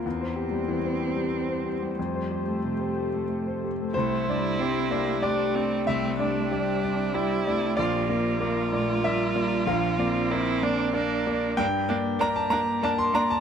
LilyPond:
<<
  \new Staff \with { instrumentName = "Grand piano" } { \time 3/4 \key c \mixolydian \tempo 4 = 95 << { r2. | r2. | c''2 d''4 | e''2. |
d''2 e''4 | f''2. | g''4 bes''16 a''16 bes''8 a''16 c'''16 bes''16 a''16 | } \\ { e,16 c''16 g'16 g16 e16 c''16 g'16 g8 c''16 g'16 g16 | f,16 c''16 g'16 a16 c16 c''16 g'16 a8 c''16 g'16 a16 | c,8 <d' d''>8 <g' d''>8 <d' d''>8 g'8 <d' d''>8 | c,8 <d' d''>8 <g' d''>8 <d' d''>8 <g' d''>8 <d' d''>8 |
bes,,8 <bes d''>8 <bes' d''>8 <bes, d''>8 <bes' d''>8 <bes d''>8 | bes,,8 <bes d''>8 <bes' d''>8 <bes d''>8 <bes' d''>8 <bes d''>8 | g,8 <bes d''>8 <bes' d''>8 <bes d''>8 <bes' d''>8 <bes d''>8 | } >> }
  \new Staff \with { instrumentName = "Ambient pad" } { \time 3/4 \key c \mixolydian << { <g' c''>2.~ | <g' c''>2. | <g' d''>2.~ | <g' d''>2. |
<d'' bes''>2.~ | <d'' bes''>2. | <bes' d''>2. | } \\ { g2. | a2. | c'2.~ | c'2. |
d'2.~ | d'2. | bes2. | } >> }
  \new Staff \with { instrumentName = "Viola" } { \time 3/4 \key c \mixolydian r2. | r2. | e'2 d'8 c'8 | c'8 d'4. e'4 |
f'8 f'2~ f'8~ | f'4 e'8 d'8 d'4 | d'8 d'8 d'8 d'8 d'8 d'8 | }
  \new Staff \with { instrumentName = "Cello" } { \time 3/4 \key c \mixolydian c'2. | a2~ a8 r8 | a8 g8 c'8 bes8 a4~ | a4 g4 g8 a8 |
bes4 bes8 a8 g4 | f8 c'4. bes4 | bes8 bes8 bes8 bes8 bes8 bes8 | }
>>